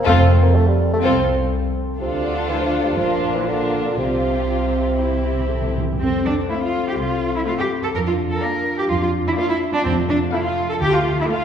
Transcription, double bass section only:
0.07 F1
1.03 C2
2.01 D2
2.98 A#1
3.98 C2
6.00 F2
6.99 C2
7.95 F2
8.90 F2
9.86 F2
10.83 D2

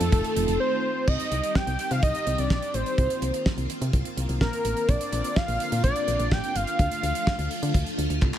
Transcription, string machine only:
Already playing: D#3 A3 C4 F4
1.08 D#3 G3 C4 G4
2.98 A#3 F4
4.89 D3 F4
6.79 F3 A3 F4

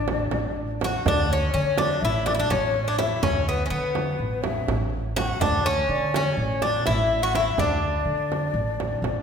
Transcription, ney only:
Already playing: D5
0.81 F#5
1.06 D5
1.25 D5
1.30 C#5
1.54 C#5
1.78 D5
2.02 E5
2.25 D5
2.37 D5
2.51 C#5
3.00 E5
3.23 C#5
3.47 B4
3.71 B4
4.43 E5
5.16 F#5
5.21 G5
5.27 F#5
5.41 D5
5.64 C#5
5.89 D5
6.15 D5
6.26 C#5
6.64 D5
6.86 E5
7.23 F#5
7.35 E5
7.59 D5

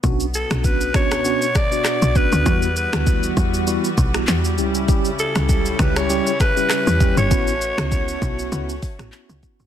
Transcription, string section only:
0.04 B2 B3
2.46 E3 G3 F#4
4.58 C#3 C#4 E4
7.31 A3 F#4

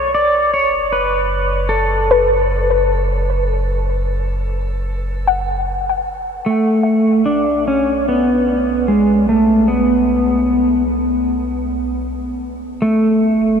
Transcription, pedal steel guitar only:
Already playing: C#5
0.15 D5
0.54 C#5
0.92 B4
1.69 A4
6.46 A3
7.26 D4
7.68 C#4
8.09 B3
8.88 G#3
9.29 A3
9.68 B3
12.82 A3

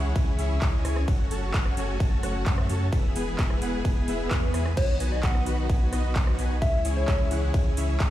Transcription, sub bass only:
Already playing: C#2
0.16 C#2
0.39 C#2
0.62 C#2
0.85 C#2
1.08 F#1
1.31 F#1
1.54 F#1
1.77 F#1
2.00 F#1
2.23 F#1
2.46 F#2
2.69 F#2
2.93 E1
3.16 E1
3.39 E1
3.62 E1
3.85 E1
4.08 E1
4.31 E2
4.54 E2
4.77 B1
5.00 B1
5.23 B1
5.46 B1
5.70 B1
5.93 B1
6.16 B1
6.39 B1
6.62 C#2
6.85 C#2
7.08 C#2
7.31 C#2
7.54 C#2
7.77 C#2
8.00 C#2

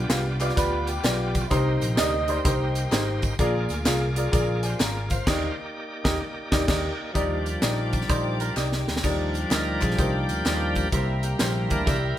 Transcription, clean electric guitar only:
0.42 D5
0.58 B4
0.89 G4
1.98 D#5
2.30 C5
2.45 G4
8.10 C5
8.41 A#4
8.57 G4

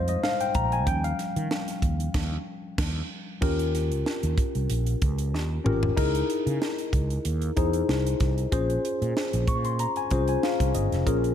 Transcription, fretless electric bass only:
Already playing: F2
0.55 A#1
0.87 D#2
1.36 D#3
1.82 D#2
2.14 D#2
2.78 D#2
3.42 D#2
3.91 C#2
4.23 D#2
4.55 C2
4.70 A#1
5.02 C#2
5.34 D#2
5.66 G#1
5.98 C#2
6.46 C#3
6.93 C#2
7.25 D#2
7.57 E2
7.89 C2
8.21 C2
8.52 A#1
9.02 A#2
9.34 A#1
9.47 A#2
10.12 C2
10.60 C2
10.75 G1
10.92 F1
11.07 A#1

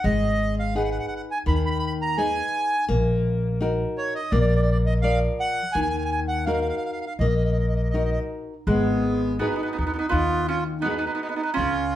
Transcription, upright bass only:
0.04 G#1
1.47 D#2
2.89 A#1
4.32 A#1
5.75 D#2
7.19 A#1
8.67 G#1
9.78 D#2
10.12 D#2
11.57 C#2

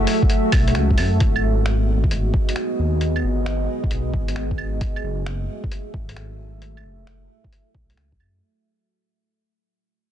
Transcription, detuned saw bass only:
0.53 B1
0.76 C#2
0.99 F#2
1.20 G#1
2.79 D#2
3.24 G#1
3.91 B1
4.14 G#1
5.03 F#1
5.94 G#1
6.84 F#1
7.75 B1
7.97 C#2
8.20 F#2

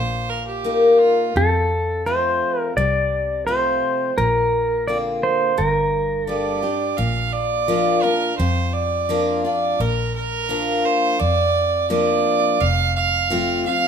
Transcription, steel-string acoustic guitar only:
Already playing: A#2
0.64 A#3 D#4 F4 A#4
1.36 F2
2.06 F3 A3 C4 F4
2.78 C3
3.47 F3 A3 C4 F4
4.18 A#2
4.88 D3 A#3 C4 F4
5.58 G2
6.27 G3 A#3 D4 G4
6.62 D4 G4
6.98 A#2
7.68 F3 A#3 D4 F4
8.03 D4 F4
8.40 F2
9.09 F3 A#3 D4 F4
9.45 D4 F4
9.80 A#2
10.49 F3 A#3 D4 F4
11.20 F2
11.90 F3 A#3 D4 F4
12.60 F2
13.30 F3 A3 C4 F4
13.66 C4 F4

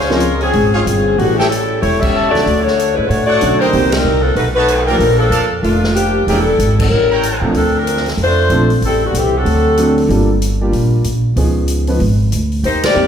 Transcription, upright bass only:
Already playing: C#2
0.54 G#1
0.86 G1
1.18 A1
1.83 E1
2.34 muted upright bass stroke
2.46 D2
2.98 A2
3.10 A2
3.42 B1
3.73 C2
4.04 C2
4.35 B1
4.99 A#1
5.30 F2
5.63 F1
6.27 E1
6.59 G#1
6.91 A1
7.41 A2
7.54 D2
8.17 F2
8.50 A#1
8.81 A1
9.14 C2
9.45 D2
10.09 G1
10.72 A#1
11.05 A#1
11.36 C#2
12.00 G#1
12.32 D2
12.63 D#2
12.95 E2

